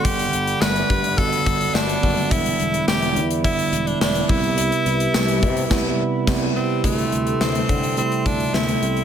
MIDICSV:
0, 0, Header, 1, 6, 480
1, 0, Start_track
1, 0, Tempo, 566038
1, 42, Time_signature, 4, 2, 24, 8
1, 7668, End_track
2, 0, Start_track
2, 0, Title_t, "Glass harmonica"
2, 0, Program_c, 0, 92
2, 0, Note_on_c, 0, 74, 62
2, 0, Note_on_c, 0, 78, 62
2, 39, Note_on_c, 0, 55, 65
2, 40, Note_on_c, 0, 83, 79
2, 1927, Note_off_c, 0, 78, 0
2, 1957, Note_on_c, 0, 76, 63
2, 3606, Note_off_c, 0, 55, 0
2, 3607, Note_off_c, 0, 74, 0
2, 3637, Note_on_c, 0, 67, 71
2, 3639, Note_on_c, 0, 71, 64
2, 5765, Note_off_c, 0, 76, 0
2, 5767, Note_off_c, 0, 83, 0
2, 5778, Note_off_c, 0, 67, 0
2, 5779, Note_off_c, 0, 71, 0
2, 5796, Note_on_c, 0, 79, 54
2, 5797, Note_on_c, 0, 69, 59
2, 5797, Note_on_c, 0, 84, 66
2, 5798, Note_on_c, 0, 76, 57
2, 7668, Note_off_c, 0, 69, 0
2, 7668, Note_off_c, 0, 76, 0
2, 7668, Note_off_c, 0, 79, 0
2, 7668, Note_off_c, 0, 84, 0
2, 7668, End_track
3, 0, Start_track
3, 0, Title_t, "Tenor saxophone"
3, 0, Program_c, 1, 66
3, 41, Note_on_c, 1, 67, 105
3, 520, Note_on_c, 1, 71, 111
3, 533, Note_off_c, 1, 67, 0
3, 1000, Note_on_c, 1, 69, 115
3, 1013, Note_off_c, 1, 71, 0
3, 1480, Note_on_c, 1, 62, 96
3, 1493, Note_off_c, 1, 69, 0
3, 1960, Note_on_c, 1, 64, 106
3, 1973, Note_off_c, 1, 62, 0
3, 2433, Note_off_c, 1, 64, 0
3, 2438, Note_on_c, 1, 67, 98
3, 2775, Note_off_c, 1, 67, 0
3, 2921, Note_on_c, 1, 64, 99
3, 3282, Note_on_c, 1, 62, 84
3, 3295, Note_off_c, 1, 64, 0
3, 3394, Note_off_c, 1, 62, 0
3, 3399, Note_on_c, 1, 62, 89
3, 3641, Note_on_c, 1, 64, 92
3, 3654, Note_off_c, 1, 62, 0
3, 5321, Note_off_c, 1, 64, 0
3, 5565, Note_on_c, 1, 60, 81
3, 5786, Note_off_c, 1, 60, 0
3, 5806, Note_on_c, 1, 57, 80
3, 6285, Note_on_c, 1, 60, 83
3, 6297, Note_off_c, 1, 57, 0
3, 6763, Note_off_c, 1, 60, 0
3, 6767, Note_on_c, 1, 60, 90
3, 7005, Note_on_c, 1, 62, 88
3, 7017, Note_off_c, 1, 60, 0
3, 7243, Note_on_c, 1, 64, 97
3, 7255, Note_off_c, 1, 62, 0
3, 7668, Note_off_c, 1, 64, 0
3, 7668, End_track
4, 0, Start_track
4, 0, Title_t, "Tine electric piano"
4, 0, Program_c, 2, 4
4, 0, Control_c, 2, 64, 127
4, 35, Note_on_c, 2, 50, 71
4, 39, Note_on_c, 2, 55, 71
4, 42, Note_on_c, 2, 59, 66
4, 45, Note_on_c, 2, 78, 83
4, 54, Control_c, 2, 64, 0
4, 178, Control_c, 2, 64, 127
4, 913, Note_off_c, 2, 50, 0
4, 914, Note_off_c, 2, 55, 0
4, 916, Note_off_c, 2, 59, 0
4, 918, Note_off_c, 2, 78, 0
4, 995, Note_on_c, 2, 50, 81
4, 999, Note_on_c, 2, 55, 72
4, 1002, Note_on_c, 2, 59, 75
4, 1006, Note_on_c, 2, 66, 86
4, 1654, Note_off_c, 2, 50, 0
4, 1656, Note_off_c, 2, 55, 0
4, 1658, Note_off_c, 2, 59, 0
4, 1660, Note_off_c, 2, 66, 0
4, 1716, Note_on_c, 2, 50, 73
4, 1718, Note_on_c, 2, 55, 66
4, 1722, Note_on_c, 2, 59, 65
4, 1726, Note_on_c, 2, 66, 74
4, 1937, Note_off_c, 2, 50, 0
4, 1938, Note_off_c, 2, 55, 0
4, 1940, Note_off_c, 2, 59, 0
4, 1942, Note_off_c, 2, 66, 0
4, 1955, Note_on_c, 2, 50, 73
4, 1959, Note_on_c, 2, 54, 51
4, 1963, Note_on_c, 2, 59, 66
4, 1965, Note_on_c, 2, 64, 80
4, 1971, Control_c, 2, 64, 0
4, 2013, Note_on_c, 2, 55, 67
4, 2015, Note_off_c, 2, 54, 0
4, 2129, Control_c, 2, 64, 127
4, 2833, Note_off_c, 2, 50, 0
4, 2836, Note_off_c, 2, 59, 0
4, 2838, Note_off_c, 2, 64, 0
4, 2862, Note_off_c, 2, 55, 0
4, 2914, Note_on_c, 2, 50, 82
4, 2917, Note_on_c, 2, 55, 71
4, 2922, Note_on_c, 2, 59, 73
4, 2924, Note_on_c, 2, 64, 93
4, 3573, Note_off_c, 2, 50, 0
4, 3575, Note_off_c, 2, 55, 0
4, 3577, Note_off_c, 2, 59, 0
4, 3578, Note_off_c, 2, 64, 0
4, 3635, Note_on_c, 2, 48, 81
4, 3638, Note_on_c, 2, 55, 76
4, 3642, Note_on_c, 2, 59, 69
4, 3645, Note_on_c, 2, 64, 89
4, 3653, Control_c, 2, 64, 0
4, 3786, Control_c, 2, 64, 127
4, 4513, Note_off_c, 2, 48, 0
4, 4514, Note_off_c, 2, 55, 0
4, 4516, Note_off_c, 2, 59, 0
4, 4518, Note_off_c, 2, 64, 0
4, 4835, Note_on_c, 2, 48, 105
4, 4839, Note_on_c, 2, 55, 106
4, 4842, Note_on_c, 2, 59, 110
4, 4846, Note_on_c, 2, 64, 105
4, 5001, Note_off_c, 2, 48, 0
4, 5003, Note_off_c, 2, 55, 0
4, 5005, Note_off_c, 2, 59, 0
4, 5007, Note_off_c, 2, 64, 0
4, 5316, Note_on_c, 2, 48, 104
4, 5320, Note_on_c, 2, 55, 104
4, 5325, Note_on_c, 2, 59, 103
4, 5327, Note_on_c, 2, 64, 106
4, 5482, Note_off_c, 2, 48, 0
4, 5484, Note_off_c, 2, 55, 0
4, 5486, Note_off_c, 2, 59, 0
4, 5488, Note_off_c, 2, 64, 0
4, 5797, Note_on_c, 2, 48, 69
4, 5800, Note_on_c, 2, 55, 59
4, 5804, Note_on_c, 2, 57, 58
4, 5807, Note_on_c, 2, 64, 73
4, 5811, Control_c, 2, 64, 0
4, 5972, Control_c, 2, 64, 127
4, 6674, Note_off_c, 2, 48, 0
4, 6675, Note_off_c, 2, 55, 0
4, 6677, Note_off_c, 2, 57, 0
4, 6678, Note_off_c, 2, 64, 0
4, 6757, Note_on_c, 2, 48, 70
4, 6759, Note_on_c, 2, 55, 66
4, 6763, Note_on_c, 2, 57, 64
4, 6766, Note_on_c, 2, 64, 79
4, 7196, Note_off_c, 2, 48, 0
4, 7197, Note_off_c, 2, 55, 0
4, 7200, Note_off_c, 2, 57, 0
4, 7201, Note_off_c, 2, 64, 0
4, 7235, Note_on_c, 2, 48, 65
4, 7239, Note_on_c, 2, 55, 60
4, 7242, Note_on_c, 2, 57, 57
4, 7246, Note_on_c, 2, 59, 68
4, 7668, Note_off_c, 2, 48, 0
4, 7668, Note_off_c, 2, 55, 0
4, 7668, Note_off_c, 2, 57, 0
4, 7668, Note_off_c, 2, 59, 0
4, 7668, End_track
5, 0, Start_track
5, 0, Title_t, "Fretless electric bass"
5, 0, Program_c, 3, 35
5, 40, Note_on_c, 3, 31, 101
5, 213, Note_off_c, 3, 31, 0
5, 279, Note_on_c, 3, 31, 82
5, 453, Note_off_c, 3, 31, 0
5, 518, Note_on_c, 3, 31, 104
5, 692, Note_off_c, 3, 31, 0
5, 763, Note_on_c, 3, 43, 99
5, 1022, Note_off_c, 3, 43, 0
5, 1241, Note_on_c, 3, 31, 104
5, 1414, Note_off_c, 3, 31, 0
5, 1477, Note_on_c, 3, 31, 108
5, 1651, Note_off_c, 3, 31, 0
5, 1724, Note_on_c, 3, 30, 84
5, 1896, Note_off_c, 3, 30, 0
5, 1960, Note_on_c, 3, 28, 113
5, 2133, Note_off_c, 3, 28, 0
5, 2199, Note_on_c, 3, 28, 101
5, 2373, Note_off_c, 3, 28, 0
5, 2440, Note_on_c, 3, 28, 100
5, 2679, Note_on_c, 3, 40, 99
5, 2692, Note_off_c, 3, 28, 0
5, 2939, Note_off_c, 3, 40, 0
5, 3157, Note_on_c, 3, 28, 98
5, 3332, Note_off_c, 3, 28, 0
5, 3398, Note_on_c, 3, 28, 98
5, 3572, Note_off_c, 3, 28, 0
5, 3641, Note_on_c, 3, 36, 96
5, 3987, Note_off_c, 3, 36, 0
5, 4119, Note_on_c, 3, 36, 92
5, 4293, Note_off_c, 3, 36, 0
5, 4360, Note_on_c, 3, 36, 91
5, 4602, Note_on_c, 3, 48, 105
5, 4615, Note_off_c, 3, 36, 0
5, 4774, Note_off_c, 3, 48, 0
5, 4840, Note_on_c, 3, 36, 105
5, 5004, Note_off_c, 3, 36, 0
5, 5320, Note_on_c, 3, 36, 110
5, 5484, Note_off_c, 3, 36, 0
5, 5800, Note_on_c, 3, 38, 91
5, 5973, Note_off_c, 3, 38, 0
5, 6040, Note_on_c, 3, 38, 84
5, 6213, Note_off_c, 3, 38, 0
5, 6281, Note_on_c, 3, 38, 88
5, 6454, Note_off_c, 3, 38, 0
5, 6523, Note_on_c, 3, 50, 88
5, 6781, Note_off_c, 3, 50, 0
5, 7002, Note_on_c, 3, 38, 82
5, 7174, Note_off_c, 3, 38, 0
5, 7239, Note_on_c, 3, 38, 95
5, 7413, Note_off_c, 3, 38, 0
5, 7479, Note_on_c, 3, 36, 83
5, 7653, Note_off_c, 3, 36, 0
5, 7668, End_track
6, 0, Start_track
6, 0, Title_t, "Drums"
6, 41, Note_on_c, 9, 36, 112
6, 42, Note_on_c, 9, 42, 101
6, 126, Note_off_c, 9, 36, 0
6, 127, Note_off_c, 9, 42, 0
6, 163, Note_on_c, 9, 42, 60
6, 248, Note_off_c, 9, 42, 0
6, 282, Note_on_c, 9, 42, 69
6, 366, Note_off_c, 9, 42, 0
6, 402, Note_on_c, 9, 42, 63
6, 487, Note_off_c, 9, 42, 0
6, 521, Note_on_c, 9, 54, 69
6, 523, Note_on_c, 9, 38, 121
6, 606, Note_off_c, 9, 54, 0
6, 608, Note_off_c, 9, 38, 0
6, 642, Note_on_c, 9, 42, 51
6, 727, Note_off_c, 9, 42, 0
6, 762, Note_on_c, 9, 42, 71
6, 763, Note_on_c, 9, 36, 89
6, 846, Note_off_c, 9, 42, 0
6, 848, Note_off_c, 9, 36, 0
6, 882, Note_on_c, 9, 42, 62
6, 967, Note_off_c, 9, 42, 0
6, 1000, Note_on_c, 9, 36, 96
6, 1000, Note_on_c, 9, 42, 74
6, 1085, Note_off_c, 9, 36, 0
6, 1085, Note_off_c, 9, 42, 0
6, 1123, Note_on_c, 9, 42, 52
6, 1207, Note_off_c, 9, 42, 0
6, 1241, Note_on_c, 9, 42, 76
6, 1242, Note_on_c, 9, 36, 92
6, 1326, Note_off_c, 9, 42, 0
6, 1327, Note_off_c, 9, 36, 0
6, 1363, Note_on_c, 9, 42, 52
6, 1448, Note_off_c, 9, 42, 0
6, 1483, Note_on_c, 9, 54, 65
6, 1484, Note_on_c, 9, 38, 98
6, 1567, Note_off_c, 9, 54, 0
6, 1569, Note_off_c, 9, 38, 0
6, 1603, Note_on_c, 9, 42, 50
6, 1688, Note_off_c, 9, 42, 0
6, 1724, Note_on_c, 9, 36, 82
6, 1724, Note_on_c, 9, 46, 70
6, 1809, Note_off_c, 9, 36, 0
6, 1809, Note_off_c, 9, 46, 0
6, 1843, Note_on_c, 9, 42, 48
6, 1928, Note_off_c, 9, 42, 0
6, 1961, Note_on_c, 9, 36, 113
6, 1962, Note_on_c, 9, 42, 108
6, 2046, Note_off_c, 9, 36, 0
6, 2047, Note_off_c, 9, 42, 0
6, 2084, Note_on_c, 9, 42, 60
6, 2168, Note_off_c, 9, 42, 0
6, 2202, Note_on_c, 9, 42, 73
6, 2287, Note_off_c, 9, 42, 0
6, 2323, Note_on_c, 9, 42, 62
6, 2408, Note_off_c, 9, 42, 0
6, 2441, Note_on_c, 9, 54, 67
6, 2443, Note_on_c, 9, 38, 122
6, 2526, Note_off_c, 9, 54, 0
6, 2528, Note_off_c, 9, 38, 0
6, 2562, Note_on_c, 9, 42, 51
6, 2647, Note_off_c, 9, 42, 0
6, 2683, Note_on_c, 9, 42, 68
6, 2767, Note_off_c, 9, 42, 0
6, 2803, Note_on_c, 9, 42, 63
6, 2888, Note_off_c, 9, 42, 0
6, 2921, Note_on_c, 9, 36, 94
6, 2921, Note_on_c, 9, 42, 77
6, 3006, Note_off_c, 9, 36, 0
6, 3006, Note_off_c, 9, 42, 0
6, 3042, Note_on_c, 9, 42, 55
6, 3127, Note_off_c, 9, 42, 0
6, 3161, Note_on_c, 9, 42, 79
6, 3246, Note_off_c, 9, 42, 0
6, 3283, Note_on_c, 9, 42, 47
6, 3368, Note_off_c, 9, 42, 0
6, 3402, Note_on_c, 9, 54, 65
6, 3404, Note_on_c, 9, 38, 103
6, 3487, Note_off_c, 9, 54, 0
6, 3488, Note_off_c, 9, 38, 0
6, 3521, Note_on_c, 9, 42, 51
6, 3606, Note_off_c, 9, 42, 0
6, 3641, Note_on_c, 9, 36, 105
6, 3643, Note_on_c, 9, 46, 71
6, 3726, Note_off_c, 9, 36, 0
6, 3728, Note_off_c, 9, 46, 0
6, 3762, Note_on_c, 9, 42, 50
6, 3846, Note_off_c, 9, 42, 0
6, 3882, Note_on_c, 9, 42, 109
6, 3966, Note_off_c, 9, 42, 0
6, 4003, Note_on_c, 9, 42, 56
6, 4088, Note_off_c, 9, 42, 0
6, 4122, Note_on_c, 9, 42, 73
6, 4207, Note_off_c, 9, 42, 0
6, 4242, Note_on_c, 9, 42, 61
6, 4327, Note_off_c, 9, 42, 0
6, 4360, Note_on_c, 9, 54, 67
6, 4362, Note_on_c, 9, 38, 118
6, 4445, Note_off_c, 9, 54, 0
6, 4447, Note_off_c, 9, 38, 0
6, 4481, Note_on_c, 9, 42, 52
6, 4566, Note_off_c, 9, 42, 0
6, 4601, Note_on_c, 9, 42, 72
6, 4603, Note_on_c, 9, 36, 89
6, 4686, Note_off_c, 9, 42, 0
6, 4687, Note_off_c, 9, 36, 0
6, 4721, Note_on_c, 9, 42, 64
6, 4805, Note_off_c, 9, 42, 0
6, 4841, Note_on_c, 9, 36, 107
6, 4841, Note_on_c, 9, 38, 106
6, 4841, Note_on_c, 9, 49, 86
6, 4925, Note_off_c, 9, 36, 0
6, 4925, Note_off_c, 9, 38, 0
6, 4925, Note_off_c, 9, 49, 0
6, 5320, Note_on_c, 9, 38, 104
6, 5320, Note_on_c, 9, 49, 84
6, 5321, Note_on_c, 9, 36, 109
6, 5405, Note_off_c, 9, 36, 0
6, 5405, Note_off_c, 9, 38, 0
6, 5405, Note_off_c, 9, 49, 0
6, 5800, Note_on_c, 9, 36, 100
6, 5801, Note_on_c, 9, 42, 92
6, 5885, Note_off_c, 9, 36, 0
6, 5885, Note_off_c, 9, 42, 0
6, 5923, Note_on_c, 9, 42, 51
6, 6007, Note_off_c, 9, 42, 0
6, 6041, Note_on_c, 9, 42, 65
6, 6126, Note_off_c, 9, 42, 0
6, 6162, Note_on_c, 9, 42, 56
6, 6246, Note_off_c, 9, 42, 0
6, 6282, Note_on_c, 9, 38, 107
6, 6367, Note_off_c, 9, 38, 0
6, 6402, Note_on_c, 9, 42, 47
6, 6487, Note_off_c, 9, 42, 0
6, 6523, Note_on_c, 9, 42, 67
6, 6524, Note_on_c, 9, 36, 87
6, 6608, Note_off_c, 9, 36, 0
6, 6608, Note_off_c, 9, 42, 0
6, 6642, Note_on_c, 9, 42, 55
6, 6727, Note_off_c, 9, 42, 0
6, 6761, Note_on_c, 9, 42, 66
6, 6845, Note_off_c, 9, 42, 0
6, 6883, Note_on_c, 9, 42, 47
6, 6968, Note_off_c, 9, 42, 0
6, 7002, Note_on_c, 9, 36, 83
6, 7002, Note_on_c, 9, 42, 71
6, 7087, Note_off_c, 9, 36, 0
6, 7087, Note_off_c, 9, 42, 0
6, 7124, Note_on_c, 9, 42, 45
6, 7208, Note_off_c, 9, 42, 0
6, 7244, Note_on_c, 9, 38, 97
6, 7329, Note_off_c, 9, 38, 0
6, 7363, Note_on_c, 9, 42, 47
6, 7448, Note_off_c, 9, 42, 0
6, 7485, Note_on_c, 9, 42, 63
6, 7569, Note_off_c, 9, 42, 0
6, 7603, Note_on_c, 9, 42, 45
6, 7668, Note_off_c, 9, 42, 0
6, 7668, End_track
0, 0, End_of_file